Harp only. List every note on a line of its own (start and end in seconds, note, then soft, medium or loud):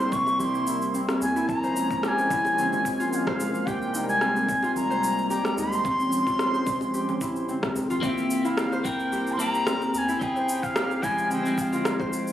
0.00 1.97 A#3 medium
0.00 0.94 C4 medium
0.00 0.67 E4 loud
0.00 0.39 G4 medium
0.00 1.63 C5 medium
0.40 2.03 G4 medium
0.67 1.36 E4 medium
0.94 2.58 C4 medium
1.36 2.30 E4 medium
1.63 3.27 C5 medium
2.03 3.66 G4 medium
2.30 3.06 E4 medium
2.58 4.21 C4 medium
3.00 4.63 F4 loud
3.27 4.90 C5 medium
3.67 5.30 G4 medium
3.94 5.57 D#4 medium
4.21 5.84 C4 medium
4.63 6.26 F4 medium
4.90 6.53 C5 loud
5.30 6.93 G4 medium
5.58 7.27 D#4 medium
5.85 7.48 C4 medium
6.27 7.27 F4 medium
6.54 8.52 C5 loud
6.94 9.12 G4 medium
7.21 7.96 E4 medium
7.48 8.03 C4 medium
7.90 8.51 F4 loud
8.03 9.66 C4 medium
8.45 9.39 E4 loud
8.72 10.36 C5 loud
9.12 10.75 G4 medium
9.39 10.08 E4 medium
9.67 11.30 C4 medium
10.09 11.03 E4 loud
10.36 11.99 C5 medium
10.76 12.32 G4 medium
11.03 11.78 E4 medium
11.30 12.32 C4 medium
11.72 12.32 F4 loud
12.00 12.32 C5 loud